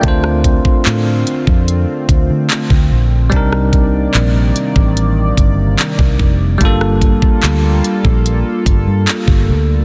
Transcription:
<<
  \new Staff \with { instrumentName = "Tine electric piano" } { \time 4/4 \key d \phrygian \tempo 4 = 73 << { bes'16 r2. r8. | r1 | r1 | } \\ { <a c' f' c''>1 | <g c' d' ees' bes'>1 | <g a bes d' f' a'>1 | } >> }
  \new Staff \with { instrumentName = "Analog synth pad" } { \time 4/4 \key d \phrygian <d a c' f'>1 | <c ees bes d''>1 | <g bes f' a'>1 | }
  \new Staff \with { instrumentName = "Fingered electric bass" } { \clef bass \time 4/4 \key d \phrygian d,8. r16 a,8 r16 f,8 r16 d,16 d16 r16 d,16 bes,,8 | c,4 bes,,8 r16 a,,8. g,,8 r16 c,16 f,,8 | g,,8. r16 d,8 r16 bes,,8 r16 g,,16 g,16 r16 g,,16 d,8 | }
  \new DrumStaff \with { instrumentName = "Drums" } \drummode { \time 4/4 <hh bd>16 ss16 <hh bd>16 bd16 <hc hh>8 hh16 bd16 hh8 <hh bd>8 <hc hh>16 bd8. | <hh bd>16 ss16 <hh bd>8 <hc hh>8 hh16 bd16 hh8 <hh bd>8 <hc hh>16 bd16 bd8 | <hh bd>16 ss16 <hh bd>16 bd16 <hc hh>8 hh16 bd16 hh8 <hh bd>8 <hc hh>16 bd8. | }
>>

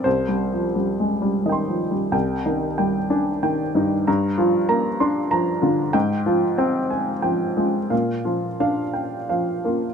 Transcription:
<<
  \new Staff \with { instrumentName = "Upright piano" } { \time 3/4 \key c \minor \tempo 4 = 91 << { r2 <ees'' g'' c'''>4 | g''8 ees'8 g''8 aes''8 g''8 ees'8 | bes''8 f'8 bes''8 c'''8 bes''8 f'8 | g''8 f'8 g''8 aes''8 g''8 f'8 |
f''8 f'8 f''8 g''8 f''8 f'8 | } \\ { c''2~ c''8 r8 | r2. | r2. | r2. |
r2. | } >> }
  \new Staff \with { instrumentName = "Upright piano" } { \clef bass \time 3/4 \key c \minor \tuplet 3/2 { c,8 g8 f8 g8 aes8 g8 ees8 f8 g8 } | c,8 ees8 g8 d'8 ees8 g,8 | g,8 f8 bes8 d'8 f8 d8 | aes,8 f8 c'4 f8 aes8 |
bes,8 f8 d'4 f8 bes8 | }
>>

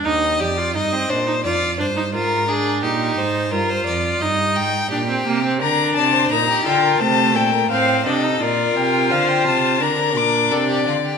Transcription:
<<
  \new Staff \with { instrumentName = "Violin" } { \time 4/4 \key ees \major \tempo 4 = 86 r1 | r1 | bes''8 a''8 bes''8 g''8 a''8 g''8 f''8 ees''8 | d''8 g''8 f''16 g''16 a''8 bes''8 d'''8 d''4 | }
  \new Staff \with { instrumentName = "Violin" } { \time 4/4 \key ees \major ees''8 d''8 ees''8 c''8 d''8 c''8 bes'8 aes'8 | g'8 c''8 bes'16 c''16 d''8 ees''8 g''8 g'4 | bes'8 d''16 c''16 bes'16 g'16 a'16 bes'16 c''8 a'16 bes'16 c''8 a'8 | bes'4 c''4 bes'4 a'16 g'16 f'16 g'16 | }
  \new Staff \with { instrumentName = "Viola" } { \time 4/4 \key ees \major ees'8 g'16 f'16 ees'16 c'16 d'16 ees'16 f'8 d'16 ees'16 f'8 d'8 | ees'4 f'4 ees'4 d'16 c'16 bes16 c'16 | d'4 ees'8 f'8 a4 c'8 d'16 ees'16 | f'2 d'2 | }
  \new Staff \with { instrumentName = "Cello" } { \clef bass \time 4/4 \key ees \major ees,8 f,8 g,8 bes,8 f,8 g,8 aes,4 | bes,8 aes,8 g,8 f,8 g,8 aes,8 bes,8 c8 | d8 c8 bes,8 d8 c8 bes,8 a,8 c8 | bes,8 c8 d8 c8 d8 bes,8 c8 d8 | }
>>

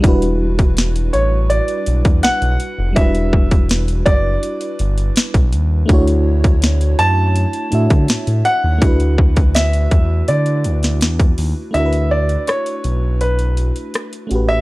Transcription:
<<
  \new Staff \with { instrumentName = "Grand piano" } { \time 4/4 \key d \major \tempo 4 = 82 r4. cis''8 d''4 fis''4 | e''4 r8 d''4. r4 | r4. a''2 fis''8~ | fis''4 e''4 d''4. r8 |
e''8 d''8 cis''4 b'4~ b'16 r8 e''16 | }
  \new Staff \with { instrumentName = "FM electric piano" } { \time 4/4 \key d \major <g d' e' fis' b'>1 | <g d' e' fis' b'>1 | <a d' e' fis' cis''>2~ <a d' e' fis' cis''>8 <a d' e' fis' e''>4. | <a d' e' fis' b'>1 |
<a d' e' fis' bes' b'>2.~ <a d' e' fis' bes' b'>8 <a cis' fis' g' b'>8 | }
  \new Staff \with { instrumentName = "Analog synth bass" } { \clef bass \time 4/4 \key d \major e,,4. a,,8. r16 b,,16 e,16 b,,16 b,,16 r16 f,,16 | e,,4. fis,,8 r8 g,,8 r16 b,,16 ees,8 | d,4. fis,8. r16 a,16 d16 a,16 a,16 r16 ees,16 | d,4. e,8 d8 d,8 e,8 ees,16 r16 |
d,4 r8 b,,4~ b,,16 r8. a,,8 | }
  \new DrumStaff \with { instrumentName = "Drums" } \drummode { \time 4/4 <hh bd>16 hh8 <hh bd>16 <hh sn>16 hh16 hh8 hh16 hh16 hh16 <hh bd>16 <hh sn>16 hh16 hh8 | <hh bd>16 hh16 bd16 <hh bd>16 <hh sn>16 hh16 <hh bd>8 hh16 hh16 hh16 hh16 <hh sn>16 <hh bd>16 hh8 | <hh bd>16 hh8 <hh bd>16 <hh sn>16 hh16 hh8 hh16 hh16 hh16 <hh bd>16 <hh sn>16 hh16 hh8 | <hh bd>16 hh16 bd16 <hh bd>16 <hh sn>16 hh16 <hh bd>8 hh16 hh16 hh16 <hh sn>16 <hh sn>16 <hh bd>16 hho8 |
hh16 hh8 hh16 <hh ss>16 hh16 hh8 hh16 hh16 hh16 hh16 <hh ss>16 hh16 hh8 | }
>>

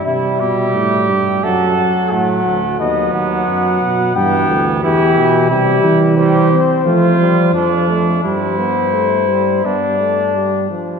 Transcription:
<<
  \new Staff \with { instrumentName = "Cornet" } { \time 4/4 \key c \major \tempo 4 = 88 e''2 fis''4 fis''4 | dis''8 fis''4. g''4 g'4 | \key g \mixolydian g'4 c''2~ c''8 r8 | c''2 d''4. r8 | }
  \new Staff \with { instrumentName = "Trumpet" } { \time 4/4 \key c \major e'8 g'4. a'4 a4 | b2 b4 e'4 | \key g \mixolydian e'4 g'8 r8 f'4 d'4 | e'2 d'4. r8 | }
  \new Staff \with { instrumentName = "Trombone" } { \clef bass \time 4/4 \key c \major g2 fis8 fis4. | fis2 e4 e4 | \key g \mixolydian g4 g8 c'8 a8 g8 f8 a8 | g8 b8 a8 g8 b8 a8 g8 f8 | }
  \new Staff \with { instrumentName = "Tuba" } { \clef bass \time 4/4 \key c \major c8 b,8 a,8 g,8 fis,4 a,8 d,8 | dis,8 dis,8 fis,8 b,8 g,8 d,8 e,8 b,8 | \key g \mixolydian c8 e4 r8 f4 f,4 | g,2 g,4. r8 | }
>>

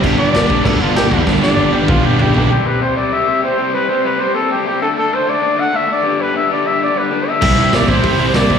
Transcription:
<<
  \new Staff \with { instrumentName = "Flugelhorn" } { \time 4/4 \key c \lydian \tempo 4 = 195 r8 d''4. a'8 f'8 g'4 | r8 d''4 g'8 f'8 g'8 g'8 g'8 | g'8 b'8 c''8 d''8 e''4 c''4 | b'8 c''8 b'8 c''8 a'8 g'8 g'8 a'8 |
a'8 c''8 d''4 fis''8 e''8 d''4 | b'8 e''8 d''8 e''8 d''8 b'4 e''8~ | e''4 d''8 c''4~ c''16 c''16 d''8. r16 | }
  \new Staff \with { instrumentName = "Distorted electric guitar" } { \time 4/4 \key c \lydian <g, d g b d' g'>1 | <g, d g b d' g'>1 | r1 | r1 |
r1 | r1 | <c g c' e'>8 <c g c' e'>8 <c g c' e'>8 <c g c' e'>8 <c g c' e'>8 <c g c' e'>8 <c g c' e'>8 <c g c' e'>8 | }
  \new Staff \with { instrumentName = "Distorted electric guitar" } { \clef bass \time 4/4 \key c \lydian <g, d g b d'>8 <g, d g b d'>8 <g, d g b d'>8 <g, d g b d'>8 <g, d g b d'>8 <g, d g b d'>8 <g, d g b d'>8 <g, d g b d'>8 | <g, d g b d'>8 <g, d g b d'>8 <g, d g b d'>8 <g, d g b d'>8 <g, d g b d'>8 <g, d g b d'>8 <g, d g b d'>8 <g, d g b d'>8 | r1 | r1 |
r1 | r1 | <c g c' e'>8 <c g c' e'>8 <c g c' e'>8 <c g c' e'>8 <c g c' e'>8 <c g c' e'>8 <c g c' e'>8 <c g c' e'>8 | }
  \new Staff \with { instrumentName = "Overdriven electric guitar" } { \clef bass \time 4/4 \key c \lydian <g, d g>8 <g, d g>8 <g, d g>8 <g, d g>8 <g, d g>8 <g, d g>8 <g, d g>8 <g, d g>8 | <g, d g>8 <g, d g>8 <g, d g>8 <g, d g>8 <g, d g>8 <g, d g>8 <g, d g>8 <g, d g>8 | <c g c'>8 <c g c'>8 <c g c'>8 <c g c'>8 <c g c'>8 <c g c'>8 <c g c'>8 <c g c'>8 | <c g c'>8 <c g c'>8 <c g c'>8 <c g c'>8 <c g c'>8 <c g c'>8 <c g c'>8 <d a d'>8 |
<d a d'>8 <d a d'>8 <d a d'>8 <d a d'>8 <d a d'>8 <d a d'>8 <d a d'>8 <g, d g>8 | <g, d g>8 <g, d g>8 <g, d g>8 <g, d g>8 <g, d g>8 <g, d g>8 <g, d g>8 <g, d g>8 | <c g c'>8 <c g c'>8 <c g c'>8 <c g c'>8 <c g c'>8 <c g c'>8 <c g c'>8 <c g c'>8 | }
  \new Staff \with { instrumentName = "Picked electric bass" } { \clef bass \time 4/4 \key c \lydian g,,4 g,,8 g,,8 d,8 g,,8 g,,8 e,8 | g,,4 g,,8 g,,8 g,,8 g,,8 g,,8 b,,8 | r1 | r1 |
r1 | r1 | c,4 g,,8 a,,8 c,8 c,8 c,8 c,8 | }
  \new DrumStaff \with { instrumentName = "Drums" } \drummode { \time 4/4 <cymc bd>4 <cymc sn>8 bd8 <cymc bd>4 <cymc sn>8 bd8 | <bd sn>8 sn8 r8 tommh8 <bd toml>4 tomfh8 tomfh8 | r4 r4 r4 r4 | r4 r4 r4 r4 |
r4 r4 r4 r4 | r4 r4 r4 r4 | <cymc bd>4 <hho sn>8 bd8 <hho bd>4 <hho sn>8 bd8 | }
>>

